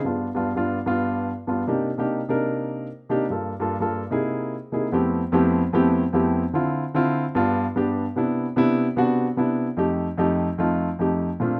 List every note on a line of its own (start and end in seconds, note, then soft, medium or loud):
0.04 0.26 G2 medium
0.04 0.26 B3 medium
0.04 0.27 D4 medium
0.04 0.27 F4 medium
0.34 0.49 G2 medium
0.34 0.50 B3 medium
0.34 0.50 D4 medium
0.34 0.50 F4 medium
0.55 0.77 G2 medium
0.55 0.77 B3 medium
0.55 0.78 D4 medium
0.55 0.78 F4 medium
0.86 1.29 G2 medium
0.86 1.29 B3 medium
0.86 1.29 D4 medium
0.86 1.30 F4 medium
1.47 1.61 G2 medium
1.47 1.62 B3 medium
1.47 1.62 D4 medium
1.47 1.62 F4 medium
1.67 1.89 C3 medium
1.67 1.89 A#3 medium
1.67 1.89 D4 medium
1.67 1.89 D#4 medium
1.67 1.90 G4 medium
1.98 2.19 C3 medium
1.98 2.20 A#3 medium
1.98 2.20 D4 medium
1.98 2.20 D#4 medium
1.98 2.20 G4 medium
2.28 2.85 C3 medium
2.28 2.86 A#3 medium
2.28 2.86 D4 medium
2.28 2.86 D#4 medium
2.28 2.86 A#4 medium
3.09 3.24 C3 medium
3.09 3.24 A#3 medium
3.09 3.24 D4 medium
3.09 3.25 D#4 medium
3.09 3.25 G4 medium
3.30 3.51 G2 medium
3.30 3.52 A#3 medium
3.30 3.52 F4 medium
3.30 3.52 A4 medium
3.60 3.74 G2 medium
3.60 3.75 A#3 medium
3.60 3.75 F4 medium
3.60 3.75 A4 medium
3.80 4.02 G2 medium
3.80 4.02 A#3 medium
3.80 4.02 F4 medium
3.80 4.03 A4 medium
4.11 4.54 C3 medium
4.11 4.54 A#3 medium
4.11 4.54 D#4 medium
4.11 4.54 E4 medium
4.11 4.54 G#4 medium
4.72 4.86 C3 medium
4.72 4.87 A#3 medium
4.72 4.87 D#4 medium
4.72 4.87 E4 medium
4.72 4.87 G#4 medium
4.92 5.21 F2 medium
4.92 5.21 A3 medium
4.92 5.21 B3 medium
4.92 5.21 C4 medium
4.92 5.21 E4 medium
4.92 5.22 G4 medium
5.32 5.61 F2 medium
5.32 5.61 A3 medium
5.32 5.61 B3 medium
5.32 5.62 C4 medium
5.32 5.62 E4 medium
5.32 5.62 G4 loud
5.73 6.02 F2 medium
5.73 6.02 A3 medium
5.73 6.02 B3 medium
5.73 6.02 C4 medium
5.73 6.02 E4 medium
5.73 6.03 G4 loud
6.13 6.42 F2 medium
6.13 6.42 A3 medium
6.13 6.42 B3 medium
6.13 6.42 C4 medium
6.13 6.43 E4 medium
6.13 6.43 G4 medium
6.53 6.82 D3 medium
6.53 6.83 C4 medium
6.53 6.83 E4 medium
6.53 6.83 F4 medium
6.94 7.23 D3 medium
6.94 7.23 C4 medium
6.94 7.24 E4 medium
6.94 7.24 F4 loud
7.35 7.64 G2 loud
7.35 7.64 B3 medium
7.35 7.64 D4 medium
7.35 7.64 F4 loud
7.75 8.04 G2 medium
7.75 8.04 B3 medium
7.75 8.05 D4 medium
7.75 8.05 G4 medium
8.16 8.45 C3 medium
8.16 8.45 B3 medium
8.16 8.45 D4 medium
8.16 8.46 E4 medium
8.56 8.85 C3 medium
8.56 8.85 B3 medium
8.56 8.85 D4 medium
8.56 8.86 E4 loud
8.96 9.25 C3 medium
8.96 9.26 B3 medium
8.96 9.26 D4 medium
8.96 9.26 F#4 loud
9.36 9.66 C3 medium
9.36 9.66 B3 medium
9.36 9.66 D4 medium
9.36 9.67 E4 medium
9.77 10.06 F2 medium
9.77 10.06 A3 medium
9.77 10.07 D#4 medium
9.77 10.07 G4 medium
10.18 10.47 F2 medium
10.18 10.47 A3 medium
10.18 10.47 D#4 medium
10.18 10.48 G4 loud
10.58 10.87 F2 medium
10.58 10.87 A3 medium
10.58 10.88 D#4 medium
10.58 10.88 F4 medium
10.99 11.28 F2 medium
10.99 11.28 A3 medium
10.99 11.28 D#4 medium
10.99 11.29 G4 medium
11.40 11.60 A#2 medium
11.40 11.60 A3 medium
11.40 11.60 C4 medium
11.40 11.60 D4 medium
11.40 11.60 F4 medium